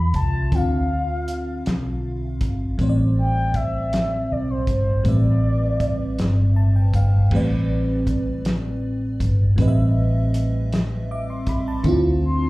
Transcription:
Already playing: E2 D3 C4 F4 E5 B5
0.14 C2 A5, kick, closed hi-hat
0.52 D2 D3 C4 F4 F5, kick, closed hi-hat
0.57 F5
1.28 closed hi-hat
1.66 B1, snare, closed hi-hat
2.41 G1, kick, closed hi-hat
2.78 A1 A2 G3 C4 C5, kick, closed hi-hat
2.83 C#5
2.89 D5
3.19 G5
3.54 E5, kick, closed hi-hat
3.93 snare, closed hi-hat
4.32 B1 D5
4.50 C5
4.67 G1 C5, kick, closed hi-hat
5.03 A1 A2 G3 C4, kick, closed hi-hat
5.07 B4 D5 E5
5.80 kick, closed hi-hat
6.19 G1, snare, closed hi-hat
6.56 A5
6.76 G5
6.94 G1 F5, kick, closed hi-hat
7.31 A1 A2 G3 C4 B4, kick, crash
7.36 D5
8.07 kick, closed hi-hat
8.45 snare, closed hi-hat
9.20 G1, kick, closed hi-hat
9.56 A1 A2 G3 C4, kick, closed hi-hat
9.60 B4 D#5
9.68 E5
10.34 closed hi-hat
10.73 snare, closed hi-hat
11.11 E5 D6
11.30 C6
11.47 B5, kick, closed hi-hat
11.68 A5
11.83 D2 D3 C4 E4, kick, closed hi-hat
11.89 F4
12.25 C6

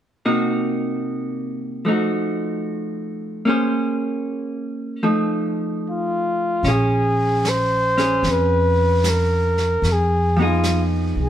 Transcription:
0.26 C3 A#3 D#4 F#4
1.85 F3 A3 D#4
1.90 F#4
3.45 A#3 C#4 G#4
3.50 C5
5.03 F3 A3 D#4
5.89 F4
6.63 A#1 C#4, brush sweep, snare
6.68 G#4
7.45 C5, snare, hi-hat pedal
7.97 C#4 G#4, snare
8.23 F2, brush sweep, snare
8.31 B4
9.04 snare, hi-hat pedal
9.09 A#4
9.58 snare
9.82 F2, brush sweep, snare
9.92 G#4
10.37 F3 B3 D#4
10.42 F4 G#4
10.64 snare, hi-hat pedal
11.15 C2
11.23 G#4

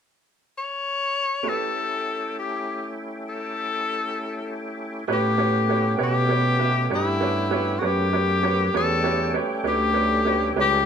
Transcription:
0.58 C#5
1.43 A3 C#4 E4 G4 B4 C#5
1.48 A4
2.39 G4
3.29 A4
5.07 A2 A3 B3 C#4 G4 B4 C#5
5.13 G4
5.38 G4 B4 C#5
5.69 G4 B4 C#5
5.98 B2 G4 B4 C#5
6.04 G4
6.28 G4 B4 C#5
6.59 G4 B4 E5
6.90 G2 G4 B4 C#5
6.95 E4
7.21 G4 B4 C#5
7.51 G4 B4 C#5
7.79 F#2 F#4 G4 B4 C#5
7.87 G4
8.13 G4 B4 C#5
8.43 G4 B4 C#5
8.74 E2 G3 A3 C#4 G4 A4 B4 C#5
9.04 G4 B4 C#5
9.34 G4 B4 C#5
9.64 D2 G4 B4 C#5
9.68 G4
9.93 G4 B4 C#5
10.25 G4 B4 C#5
10.55 C#2 G4 B4 C#5
10.61 G4

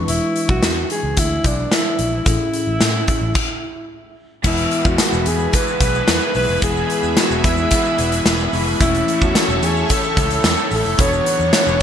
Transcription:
Already playing: E3 G#3 D4 E4 B4 C#6
0.08 E1 E4, closed hi-hat
0.36 closed hi-hat
0.49 B1 F#4, kick
0.62 E2, snare, closed hi-hat
0.90 G#4, closed hi-hat
1.03 C#2
1.17 D2 E4, kick, closed hi-hat
1.44 B1 D4, kick, closed hi-hat
1.72 E4, snare, closed hi-hat
1.99 A#1, closed hi-hat
2.25 A1 A2 C#4 E4 G#4 A4, kick, closed hi-hat
2.53 closed hi-hat
2.67 A1
2.81 A2, snare, closed hi-hat
3.08 kick, closed hi-hat
3.21 A1
3.35 kick, crash
4.43 E1 E2 B2 E3 G#3 B3 E4 G#4 B4 E5 B5, kick, crash, shaker
4.58 closed hi-hat, shaker
4.71 closed hi-hat
4.85 E2 F#4, kick, shaker
4.98 snare, closed hi-hat, tambourine, shaker
5.13 E1, shaker
5.26 E2 G#4, closed hi-hat, shaker
5.39 shaker
5.52 E2 B2 E3 B4, kick, closed hi-hat, shaker
5.67 shaker
5.80 B1, kick, closed hi-hat, shaker
5.95 shaker
6.07 E2 G#3 B3 E4 B4, snare, closed hi-hat, tambourine, shaker
6.21 shaker
6.34 B1 B4, open hi-hat, shaker
6.48 F1, shaker
6.61 E1 E2 B2 E3 G#3 B3 E4 G#4 B4, kick, closed hi-hat, shaker
6.77 shaker
6.90 closed hi-hat
7.03 E2, shaker
7.17 F#4, snare, closed hi-hat, tambourine, shaker
7.30 E1, shaker
7.44 E2 E4, kick, closed hi-hat, shaker
7.57 shaker
7.71 E2 B2 E3, kick, closed hi-hat, shaker
7.85 shaker
7.98 E1, closed hi-hat, shaker
8.12 closed hi-hat, shaker
8.26 E1, snare, closed hi-hat, tambourine, shaker
8.39 shaker
8.52 F1 B2 E3 G#3 B3 E4 B4, open hi-hat, shaker
8.67 shaker
8.78 E1 A2 E3 A3 C#4 E4 A4 C#5 C#6, kick, closed hi-hat, shaker
8.82 A3
8.95 closed hi-hat, shaker
9.08 closed hi-hat
9.22 E2 F#4, kick, shaker
9.35 snare, closed hi-hat, tambourine, shaker
9.48 E1, shaker
9.62 E2 G#4, closed hi-hat, shaker
9.76 shaker
9.89 A2 E3 A3 A4, kick, closed hi-hat, shaker
10.03 shaker
10.17 C#2, kick, closed hi-hat, shaker
10.30 closed hi-hat, shaker
10.44 E2, snare, closed hi-hat, tambourine, shaker
10.57 shaker
10.71 A1 A4, open hi-hat, shaker
10.85 F1, shaker
10.98 E1 B2 E3 F#3 B3 D4 F#4 B4 C#5 F#5 C#6, kick, closed hi-hat, shaker
11.13 shaker
11.26 closed hi-hat
11.39 E2, shaker
11.53 B2 F#3 B3, snare, closed hi-hat, tambourine, shaker
11.67 E1, shaker

